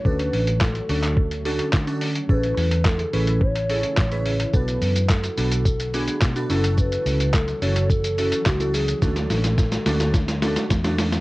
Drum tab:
HH |-xox-xox-xox-xox|-xox-xox-xox-xox|-xox-xox-xox-xox|-xox-xox-xox-xox|
SH |----------------|----------------|xxxxxxxxxxxxxxxx|xxxxxxxxxxxxxxxx|
CP |----x--x----x---|----x-------x---|----x-------x---|----x-------x---|
SD |----o-------o---|----o-------o---|----o-------o---|----o-------o---|
BD |o---o---o---o---|o---o---o---o---|o---o---o---o---|o---o---o---o---|

HH |-xox-xox-xox-xox|
SH |xxxxxxxxxxxxxxxx|
CP |----------------|
SD |oooooooooooooooo|
BD |o---o---o---o---|